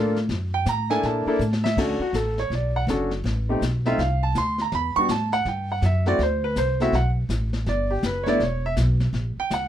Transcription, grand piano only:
0.00 0.15 A#3 medium
0.00 0.15 D4 medium
0.00 0.15 F4 medium
0.00 0.15 A4 medium
0.54 0.67 G5 medium
0.69 0.91 A#5 medium
0.90 1.25 A#3 medium
0.90 1.25 D4 medium
0.90 1.25 E4 medium
0.90 1.25 A4 medium
0.90 1.04 G#5 loud
1.05 1.61 A5 medium
1.27 1.39 A#3 medium
1.27 1.40 D4 medium
1.27 1.40 E4 medium
1.27 1.40 A4 medium
1.64 1.77 E5 medium
1.78 1.99 C#4 medium
1.78 1.99 D4 medium
1.78 1.99 F#4 medium
1.78 1.99 A4 medium
1.78 2.01 D5 medium
2.02 2.15 F#4 medium
2.15 2.38 A4 medium
2.39 2.52 C#5 medium
2.55 2.76 D5 medium
2.76 2.84 F#5 medium
2.89 3.10 C#4 medium
2.89 3.10 D4 medium
2.89 3.10 F#4 medium
2.89 3.10 A4 medium
3.49 3.61 A3 medium
3.49 3.61 C4 medium
3.49 3.61 D#4 soft
3.49 3.62 G4 medium
3.86 3.98 A3 medium
3.86 3.98 C4 medium
3.86 3.98 D#4 medium
3.86 3.99 F4 medium
3.86 3.99 E5 medium
3.99 4.22 F5 medium
4.23 4.36 A5 medium
4.38 4.60 C6 loud
4.62 4.73 A#5 medium
4.75 4.96 B5 medium
4.96 5.09 G3 medium
4.96 5.09 B3 medium
4.96 5.09 D4 medium
4.96 5.09 F#4 medium
4.96 5.09 C#6 loud
5.11 5.33 A5 medium
5.33 5.46 F#5 loud
5.48 5.70 G5 medium
5.72 5.84 F#5 medium
5.85 6.07 E5 medium
6.07 6.19 A3 medium
6.07 6.19 C4 medium
6.07 6.19 E4 medium
6.07 6.19 F#4 medium
6.07 6.20 D5 loud
6.23 6.44 C5 medium
6.44 6.57 B4 medium
6.58 6.80 C5 medium
6.81 6.92 A3 medium
6.81 6.93 C4 medium
6.81 6.93 E4 medium
6.81 6.93 F#4 medium
6.81 6.94 E5 medium
6.95 7.09 F#5 medium
7.69 7.91 D5 medium
7.91 8.04 G4 medium
8.06 8.28 B4 medium
8.24 8.39 A3 medium
8.24 8.39 B3 medium
8.24 8.39 D4 medium
8.24 8.26 C#5 medium
8.28 8.40 E4 medium
8.28 8.41 D5 loud
8.44 8.65 C#5 medium
8.66 8.73 E5 medium
9.40 9.52 G5 loud
9.54 9.68 F#5 medium

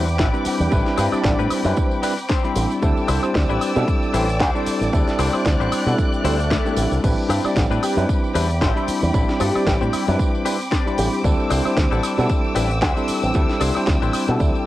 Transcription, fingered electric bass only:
0.00 0.21 E2 medium
0.19 0.28 A1 medium
0.46 muted fingered electric bass stroke soft
0.60 0.67 E2 loud
0.72 0.81 A1 loud
0.98 1.07 G2 medium
1.13 muted fingered electric bass stroke soft
1.25 1.33 A1 loud
1.39 1.46 A2 medium
1.51 muted fingered electric bass stroke soft
1.65 1.72 F#2 loud
2.56 2.65 A1 loud
2.83 2.91 D2 loud
3.09 3.17 C2 medium
3.35 3.44 D2 loud
3.49 3.57 A1 medium
3.76 3.83 B2 loud
4.14 4.41 A1 medium
4.41 4.49 D2 medium
4.67 muted fingered electric bass stroke soft
4.81 4.88 A1 loud
4.93 5.02 D2 loud
5.19 5.28 C2 medium
5.46 5.55 D2 loud
5.60 5.67 A1 medium
5.72 muted fingered electric bass stroke soft
5.86 5.93 B2 loud
6.24 6.56 D2 loud
6.77 6.86 A1 loud
6.92 6.99 C2 medium
7.04 7.12 A1 loud
7.29 7.38 G2 medium
7.44 muted fingered electric bass stroke soft
7.56 7.65 A1 loud
7.70 7.77 A2 medium
7.97 8.04 F#2 loud
8.35 8.63 E2 medium
8.62 8.70 A1 medium
8.88 muted fingered electric bass stroke soft
9.03 9.10 E2 loud
9.14 9.23 A1 loud
9.41 9.49 G2 medium
9.55 muted fingered electric bass stroke soft
9.66 9.75 A1 loud
9.82 9.89 A2 medium
9.94 muted fingered electric bass stroke soft
10.08 10.15 F#2 loud
10.99 11.07 A1 loud
11.24 11.33 D2 loud
11.51 11.60 C2 medium
11.77 11.86 D2 loud
11.92 11.99 A1 medium
12.18 12.25 B2 loud
12.56 12.82 A1 loud
12.82 12.91 D2 medium
13.09 muted fingered electric bass stroke soft
13.23 13.30 A1 loud
13.35 13.44 D2 loud
13.61 13.70 C2 loud
13.87 13.96 D2 loud
14.02 14.09 A1 medium
14.28 14.36 B2 loud
14.40 14.49 D2 loud

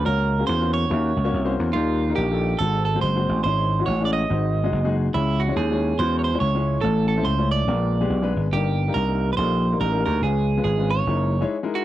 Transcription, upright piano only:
0.05 0.70 C#3 medium
0.05 0.32 A#3 medium
0.05 0.32 C#4 medium
0.05 0.32 F#4 medium
0.05 0.32 C#5 medium
0.39 0.53 A#3 medium
0.39 0.53 C#4 medium
0.39 0.53 F#4 medium
0.39 0.53 G#4 medium
0.61 0.83 A#3 medium
0.61 0.83 C#4 medium
0.61 0.83 F#4 medium
0.61 0.84 C5 medium
0.90 1.17 A#3 medium
0.90 1.17 C#4 medium
0.90 1.18 F#4 medium
0.90 1.18 E5 medium
1.24 1.38 A#3 medium
1.24 1.38 C#4 medium
1.24 1.38 F#4 medium
1.24 1.38 C#5 medium
1.45 1.67 A#3 medium
1.45 1.67 C#4 medium
1.45 1.68 F#4 medium
1.45 1.68 C5 medium
1.74 2.39 D#3 medium
1.74 2.02 G3 medium
1.74 2.02 A#3 medium
1.74 2.02 D#4 medium
1.74 2.02 A#4 medium
2.09 2.23 G3 medium
2.09 2.23 A#3 medium
2.09 2.23 D#4 medium
2.09 2.23 A#4 medium
2.31 2.53 G3 medium
2.31 2.53 A#3 medium
2.31 2.53 D#4 medium
2.31 2.53 A4 medium
2.61 3.25 G#2 medium
2.61 2.87 G#3 medium
2.61 2.87 C4 medium
2.61 2.88 F#4 medium
2.61 2.88 A4 medium
2.95 3.08 G#3 medium
2.95 3.08 C4 medium
2.95 3.09 F#4 medium
2.95 3.09 C5 medium
3.16 3.38 G#3 medium
3.16 3.38 C4 medium
3.16 3.38 F#4 medium
3.16 3.38 C5 medium
3.45 4.10 G#2 medium
3.45 3.72 G#3 medium
3.45 3.72 C#4 medium
3.45 3.72 E4 medium
3.45 3.73 C#5 medium
3.79 3.93 G#3 medium
3.79 3.93 C#4 medium
3.79 3.93 E4 medium
3.79 3.93 F#4 medium
4.00 4.22 G#3 medium
4.00 4.23 C#4 medium
4.00 4.23 E4 medium
4.00 4.23 C#5 medium
4.29 4.94 G#2 medium
4.29 4.57 G#3 medium
4.29 4.57 D#4 medium
4.29 4.57 F#4 medium
4.29 4.57 C5 medium
4.64 4.77 G#3 medium
4.64 4.78 D#4 medium
4.64 4.78 F#4 medium
4.64 4.78 D#5 medium
4.84 5.07 G#3 medium
4.84 5.07 D#4 medium
4.84 5.07 F#4 medium
4.84 5.07 G#4 medium
5.14 5.78 C#3 medium
5.14 5.41 G#3 medium
5.14 5.41 C#4 medium
5.14 5.41 E4 medium
5.14 5.41 C#5 medium
5.48 5.62 G#3 medium
5.48 5.62 C#4 medium
5.48 5.62 E4 medium
5.48 5.62 C#5 medium
5.71 5.92 G#3 medium
5.71 5.93 C#4 medium
5.71 5.93 E4 medium
5.71 5.93 C#5 medium
6.00 6.27 G#3 medium
6.00 6.27 C#4 medium
6.00 6.27 E4 medium
6.00 6.27 F#4 medium
6.34 6.47 G#3 medium
6.34 6.48 C#4 medium
6.34 6.48 E4 medium
6.34 6.48 C#5 medium
6.55 6.77 G#3 medium
6.55 6.77 C#4 medium
6.55 6.77 E4 medium
6.55 6.77 C#5 medium
6.83 7.48 A2 medium
6.83 7.11 A3 medium
6.83 7.11 C#4 medium
6.83 7.11 E4 medium
6.83 7.11 C#5 medium
7.17 7.31 A3 medium
7.17 7.31 C#4 medium
7.17 7.31 E4 medium
7.17 7.32 C5 medium
7.38 7.61 A3 medium
7.38 7.61 C#4 medium
7.38 7.61 E4 medium
7.38 7.61 C#5 medium
7.68 8.33 A#2 medium
7.68 7.95 G#3 medium
7.68 7.95 B3 medium
7.68 7.95 D4 medium
7.68 7.96 A#4 medium
8.01 8.15 G#3 medium
8.01 8.16 B3 medium
8.01 8.16 D4 medium
8.01 8.16 G4 medium
8.22 8.45 G#3 medium
8.22 8.46 B3 medium
8.22 8.46 D4 medium
8.22 8.46 B4 medium
8.53 9.18 G2 medium
8.53 8.80 G3 medium
8.53 8.80 A#3 medium
8.53 8.80 D#4 medium
8.53 8.80 A#4 medium
8.88 9.01 G3 medium
8.88 9.01 A#3 medium
8.88 9.01 D#4 medium
8.88 9.02 A#4 medium
9.08 9.31 G3 medium
9.08 9.31 A#3 medium
9.08 9.31 D#4 medium
9.08 9.31 A#4 medium
9.37 9.65 G3 medium
9.37 9.65 A#3 medium
9.37 9.65 D#4 medium
9.37 9.65 A4 medium
9.72 9.86 G3 medium
9.72 9.86 A#3 medium
9.72 9.86 D#4 medium
9.72 9.86 A#4 medium
9.92 10.15 G3 medium
9.92 10.15 A#3 medium
9.92 10.15 D#4 medium
9.92 10.15 A#4 medium
10.23 10.87 C#3 medium
10.23 10.50 G#3 medium
10.23 10.50 C#4 medium
10.23 10.50 F4 medium
10.23 10.50 B4 medium
10.58 10.71 G#3 medium
10.58 10.71 C#4 medium
10.58 10.71 F4 medium
10.58 10.71 B4 medium
10.78 11.00 G#3 medium
10.78 11.00 C#4 medium
10.78 11.01 F4 medium
10.78 11.01 B4 medium
11.07 11.34 G#3 medium
11.07 11.34 D#4 medium
11.07 11.35 E4 medium
11.07 11.35 A#4 medium
11.41 11.55 G#3 medium
11.41 11.55 D#4 medium
11.41 11.55 E4 medium
11.41 11.55 C#5 medium
11.63 11.85 G#3 medium
11.63 11.85 D#4 medium
11.63 11.85 E4 medium
11.63 11.85 A#4 medium

